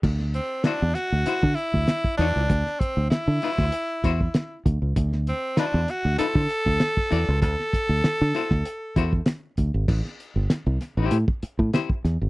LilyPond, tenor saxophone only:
\new Staff \with { instrumentName = "Tenor saxophone" } { \time 4/4 \key d \mixolydian \tempo 4 = 98 r8 c'8 d'8 fis'4 e'4 d'8~ | d'8 c'8 e'2~ e'8 r8 | r8 c'8 d'8 fis'8 a'2 | a'2. r4 |
r1 | }